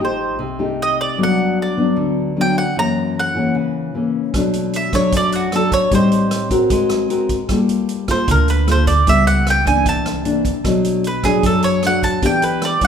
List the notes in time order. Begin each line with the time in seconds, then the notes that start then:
Already playing: F1 F3
0.00 A3 D#4 G4
0.05 C5
0.38 C2 C3
0.59 A3 D#4 G4
0.82 D#5
1.01 D5
1.18 G1 G2 F#3 B3 D4
1.23 F#5
1.62 D5
1.77 F#3 B3 D4
1.96 D2 D3
2.36 F#3 B3 D4
2.41 G5
2.58 F#5
2.75 F#1 F#2 E3 A#3 C#4 A#5
3.19 F#5
3.35 E3 A#3 C#4
3.54 C#2 C#3
3.94 E3 A#3 C#4
4.34 B2 F#3 A3 D4, kick, cross-stick, closed hi-hat
4.54 closed hi-hat
4.73 E5, closed hi-hat
4.93 F#3 A3 D4 C#5, kick, cross-stick, closed hi-hat
5.12 F#2, kick, closed hi-hat
5.17 D5
5.32 F#4, closed hi-hat
5.52 F#3 A3 D4 A4, cross-stick, closed hi-hat
5.72 C#5, kick, closed hi-hat
5.91 A2 G3 C4 D#4 C5, kick, closed hi-hat
6.12 closed hi-hat
6.31 cross-stick, closed hi-hat
6.51 C4 F#4 A#4, kick, closed hi-hat
6.70 G#3, kick, closed hi-hat
6.90 cross-stick, closed hi-hat
7.10 C4 F#4 A#4, closed hi-hat
7.29 kick, closed hi-hat
7.49 G1 G3 A#3 F4 A4, kick, cross-stick, closed hi-hat
7.69 closed hi-hat
7.89 closed hi-hat
8.08 A#3 F4 A4 C5, kick, cross-stick, closed hi-hat
8.28 D2 D3 A#4, kick, closed hi-hat
8.48 B4, closed hi-hat
8.67 A#3 F4 A4, cross-stick, closed hi-hat
8.72 C5
8.87 D5, kick, closed hi-hat
9.06 C#2 C#3 G3 B3 E4 E5, kick, closed hi-hat
9.27 F#5, closed hi-hat
9.47 G5, cross-stick, closed hi-hat
9.66 E3 A#3 D4 G#5, kick, closed hi-hat
9.85 C2 C3 A5, kick, closed hi-hat
10.06 cross-stick, closed hi-hat
10.25 E3 A#3 D4, closed hi-hat
10.45 kick, closed hi-hat
10.64 B1 B2 F#3 A3 D4, kick, cross-stick, closed hi-hat
10.85 closed hi-hat
11.04 B4, closed hi-hat
11.23 F#3 A3 D4 G#4, kick, cross-stick, closed hi-hat
11.43 F#2 A4, kick, closed hi-hat
11.63 C#5, closed hi-hat
11.83 F#3 A3 D4, cross-stick, closed hi-hat
11.87 F#5
12.03 A5, kick, closed hi-hat
12.22 E2 E3 B3 D4 G4 G5, kick, closed hi-hat
12.42 B4, closed hi-hat
12.62 D5, cross-stick, closed hi-hat
12.81 G3 C#4 E4, kick, closed hi-hat